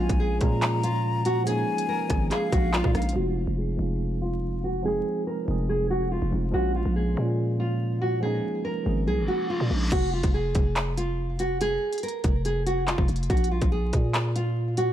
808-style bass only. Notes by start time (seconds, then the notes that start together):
0.10 A#1
0.41 A#2
2.10 G#1
2.52 A#1
2.84 A#2
2.95 A#1
3.16 F1
3.47 F1
3.79 F1
5.48 F1
6.22 F1
6.33 F1
6.54 A#1
6.85 A#1
7.17 A#2
8.86 G#1
9.07 C2
9.18 G#1
9.60 A#2
9.71 A#1
9.92 F1
10.24 F1
10.55 F1
12.24 F1
12.98 F1
13.09 F1
13.30 A#1
13.62 A#1
13.93 A#2